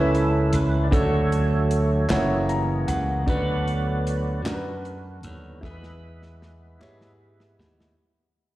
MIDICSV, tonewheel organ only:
0, 0, Header, 1, 2, 480
1, 0, Start_track
1, 0, Tempo, 785340
1, 560, Time_signature, 6, 3, 24, 8
1, 5231, End_track
2, 0, Start_track
2, 0, Title_t, "Tonewheel organ"
2, 0, Program_c, 0, 16
2, 0, Note_on_c, 0, 61, 54
2, 0, Note_on_c, 0, 64, 52
2, 0, Note_on_c, 0, 69, 81
2, 335, Note_on_c, 0, 71, 77
2, 344, Note_off_c, 0, 69, 0
2, 511, Note_on_c, 0, 74, 61
2, 530, Note_off_c, 0, 71, 0
2, 539, Note_off_c, 0, 64, 0
2, 540, Note_off_c, 0, 61, 0
2, 557, Note_off_c, 0, 74, 0
2, 557, Note_on_c, 0, 50, 46
2, 562, Note_on_c, 0, 69, 53
2, 563, Note_on_c, 0, 66, 56
2, 565, Note_on_c, 0, 54, 42
2, 565, Note_on_c, 0, 57, 50
2, 573, Note_on_c, 0, 73, 79
2, 1253, Note_off_c, 0, 50, 0
2, 1257, Note_off_c, 0, 54, 0
2, 1257, Note_off_c, 0, 57, 0
2, 1287, Note_on_c, 0, 52, 54
2, 1288, Note_on_c, 0, 68, 43
2, 1292, Note_on_c, 0, 58, 50
2, 1495, Note_off_c, 0, 69, 0
2, 1496, Note_off_c, 0, 66, 0
2, 1500, Note_off_c, 0, 73, 0
2, 1978, Note_off_c, 0, 52, 0
2, 1979, Note_off_c, 0, 68, 0
2, 1981, Note_off_c, 0, 58, 0
2, 2004, Note_on_c, 0, 50, 49
2, 2007, Note_on_c, 0, 54, 41
2, 2007, Note_on_c, 0, 74, 90
2, 2008, Note_on_c, 0, 66, 63
2, 2010, Note_on_c, 0, 59, 53
2, 2010, Note_on_c, 0, 71, 61
2, 2697, Note_off_c, 0, 50, 0
2, 2698, Note_off_c, 0, 54, 0
2, 2698, Note_off_c, 0, 66, 0
2, 2700, Note_off_c, 0, 59, 0
2, 2700, Note_off_c, 0, 71, 0
2, 2718, Note_on_c, 0, 71, 69
2, 2725, Note_on_c, 0, 62, 51
2, 2727, Note_on_c, 0, 66, 59
2, 2744, Note_off_c, 0, 74, 0
2, 3174, Note_off_c, 0, 71, 0
2, 3211, Note_on_c, 0, 50, 41
2, 3213, Note_on_c, 0, 54, 38
2, 3217, Note_on_c, 0, 59, 46
2, 3417, Note_off_c, 0, 62, 0
2, 3418, Note_off_c, 0, 66, 0
2, 3421, Note_off_c, 0, 50, 0
2, 3423, Note_off_c, 0, 54, 0
2, 3425, Note_off_c, 0, 59, 0
2, 3450, Note_on_c, 0, 64, 40
2, 3451, Note_on_c, 0, 76, 86
2, 3455, Note_on_c, 0, 56, 41
2, 3455, Note_on_c, 0, 68, 64
2, 3458, Note_on_c, 0, 71, 65
2, 3460, Note_on_c, 0, 59, 46
2, 4621, Note_off_c, 0, 76, 0
2, 4623, Note_off_c, 0, 68, 0
2, 4625, Note_off_c, 0, 71, 0
2, 4860, Note_off_c, 0, 64, 0
2, 4863, Note_off_c, 0, 56, 0
2, 4866, Note_off_c, 0, 59, 0
2, 5231, End_track
0, 0, End_of_file